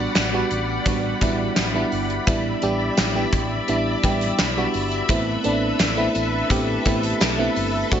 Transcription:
Already playing: G3 B3 D4 F#4 D5 F#5 B5
0.15 A1, snare, closed hi-hat, tambourine
0.33 G3 B3 D4 F#4
0.51 A1, closed hi-hat, tambourine
0.86 A1 G3 B3 D4 F#4, kick, closed hi-hat, tambourine
1.21 A1 G3 B3 D4 E4, kick, closed hi-hat, tambourine
1.56 A1, snare, closed hi-hat, tambourine
1.74 G3 B3 D4 E4
1.92 G1, open hi-hat, tambourine
2.10 closed hi-hat
2.27 A1 G3 B3 D4 E4 D5 E5, kick, closed hi-hat, tambourine
2.62 A1 G3 B3 D4 G4, closed hi-hat, tambourine
2.97 A1, snare, closed hi-hat, tambourine
3.15 G3 B3 D4 G4
3.33 A1, kick, closed hi-hat, tambourine
3.68 A1 G3 B3 D4 E4, closed hi-hat, tambourine
4.03 A1 G3 B3 D4 G4, kick, closed hi-hat, tambourine
4.21 closed hi-hat
4.38 B1, snare, closed hi-hat, tambourine
4.57 G3 B3 D4 F#4
4.74 G1, open hi-hat, tambourine
4.91 closed hi-hat, tambourine
5.09 A1 A3 B3 C4 E4 A4 B4, kick, closed hi-hat, tambourine
5.44 A1 A3 B3 C4 D4, closed hi-hat, tambourine
5.79 A1, snare, closed hi-hat, tambourine
5.97 A3 B3 C4 E4
6.15 A1, closed hi-hat, tambourine
6.50 A1 A3 B3 C4 G4, kick, closed hi-hat, tambourine
6.85 A1 A3 B3 C4 E4, kick, closed hi-hat, tambourine
7.03 closed hi-hat
7.21 B1, snare, closed hi-hat, tambourine
7.38 A3 B3 C4 E4
7.56 G1, open hi-hat, tambourine
7.91 A1 A3 C4 D4 F#4 D5 F#5 C6, kick, closed hi-hat, tambourine

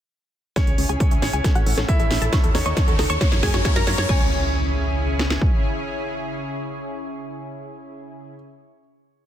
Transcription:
0.56 C#3 C#4 E4 G#4 C#5 G#5, kick, snare, closed hi-hat, riser
0.67 C#2 G#4 C#5, closed hi-hat
0.78 C#2 C#4 C#5, open hi-hat
0.89 C#2 G#4 C#5 G#5, closed hi-hat
1.00 C#4 C#5, kick, closed hi-hat
1.11 C#2 C#5 E5, closed hi-hat
1.22 G#1 C#4 C#5, snare, open hi-hat
1.33 C#2 G#4 G#5, closed hi-hat
1.44 A3 C#4 A4, kick, snare, closed hi-hat
1.55 A1 F#4 A4 F#5, closed hi-hat
1.66 A1 C#4 A4, open hi-hat
1.77 A1 A4 C#5, snare, closed hi-hat
1.89 C#4 E4 E5, kick, closed hi-hat
2.00 A1 A4 E5, closed hi-hat
2.11 A1 C#4, snare, open hi-hat
2.22 A1 A4 A5, closed hi-hat
2.33 D#3 D#4 F#4 A4 C#5 C#6, kick, snare, closed hi-hat
2.44 D#2 A4, closed hi-hat
2.55 D#2 C#4 D#4 A4 C#5, snare, open hi-hat
2.66 D#2 C#5 D#5 C#6, closed hi-hat
2.77 D#4 A4, kick, snare, closed hi-hat
2.88 D#2 A4 F#5, closed hi-hat
2.99 C#2 D#4 A4, snare, open hi-hat
3.10 D#2 C#5 A5 C#6, closed hi-hat
3.21 F#3 A#3 C#4 E4 A#4 C#5, kick, snare, closed hi-hat
3.32 F#2 E4 C#5, snare, closed hi-hat
3.43 F#2 A#3 G#4 G#5, kick, snare, open hi-hat
3.54 F#2 F#4 C#5, snare, closed hi-hat
3.65 A#3 C#5, kick, snare, closed hi-hat
3.76 F#2 A#4 A#5, snare, closed hi-hat
3.87 F#2 A#3 C#5, snare, open hi-hat
3.98 F#2 C#5, snare, closed hi-hat
4.09 C#2 C#3 C#4 E4 G#4 C#5 G#5, kick, crash, impact
5.19 snare
5.30 snare
5.41 kick

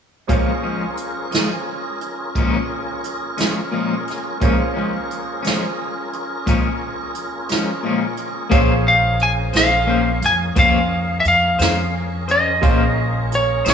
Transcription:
0.27 A#2 F3 G#3 A#3 C#4 F4 G#4 A#4 C5 C#5 F5, kick, closed hi-hat
0.63 F3 G#3 C#4
0.97 closed hi-hat
1.31 F3 G#3 C#4, snare, closed hi-hat
2.01 closed hi-hat
2.35 A#2 F3 G#3 C#4, kick, closed hi-hat
3.04 closed hi-hat
3.38 F3 G#3 C#4, snare, closed hi-hat
3.72 A#2 F3 G#3 C#4
4.07 snare, closed hi-hat
4.40 A#2 F3 G#3 A#3 C#4 F4 G#4 A#4 C5 C#5 F5, kick, closed hi-hat
4.74 F3 G#3 C#4
5.11 closed hi-hat
5.43 F3 G#3 C#4, closed hi-hat
5.47 snare
6.13 closed hi-hat
6.46 A#2 F3 G#3 C#4, kick, closed hi-hat
7.15 closed hi-hat
7.49 F3 G#3 C#4, snare, closed hi-hat
7.83 A#2 F3 G#3 C#4
8.17 closed hi-hat
8.50 A#1 A#3 C#4 G#4 A#4 C5 C#5 F5, kick, closed hi-hat
8.88 F5
9.20 G#5, closed hi-hat
9.53 A#1 C#4 G#4 C5 F5, snare, closed hi-hat
9.87 A#3 C#4 G#4 C5
10.22 F2 G#5, snare, closed hi-hat
10.56 F2 A#3 C#4 G#4 C5 F5, kick, closed hi-hat
11.20 E5
11.25 F2 F5, closed hi-hat
11.59 F2 C#4 G#4 C5, snare, closed hi-hat
12.28 C#4 G#4 C5 D#5, closed hi-hat
12.61 A#1 A#3 C#4 G#4 A#4 C5 C#5 F5 C6, kick, closed hi-hat
13.32 C#5, closed hi-hat
13.65 A#1 C#4 G#4 C5, snare, closed hi-hat
13.70 D#5

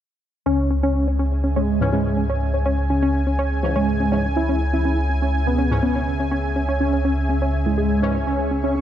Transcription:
0.46 C#2 C#3 C#4 G#4 E5 G#5
0.70 C#4
0.83 C#4
1.08 C#4
1.19 C#4
1.44 C#4
1.56 G#3 C#4
1.81 G#2 E3 C#4
1.92 G#2 E3 G#3 C#4
2.17 C#4
2.29 C#4
2.54 C#4
2.66 C#4
2.90 C#4
3.03 C#4
3.27 C#4
3.39 C#4
3.63 G#2 E3 C#4
3.76 G#3 C#4
4.00 C#4
4.12 G#2 E3 C#4
4.36 C#4 E4
4.49 C#4
4.73 C#4 E4
4.85 C#4
5.09 C#4
5.22 C#4
5.47 B3 C#4
5.58 C#4
5.71 G#2 E3 C#4
5.83 B3 C#4
5.95 C#4
6.20 C#4
6.31 C#4
6.56 C#4
6.69 C#4
6.80 C#4
6.93 C#4
7.05 C#4
7.29 C#4
7.42 C#4
7.66 G#3 E4
7.78 G#4
8.02 G#2 E3 C#4 C#5
8.15 C#5
8.27 C#2 C#4 C#6
8.39 C#4
8.51 C#4
8.64 C#4
8.75 C#4

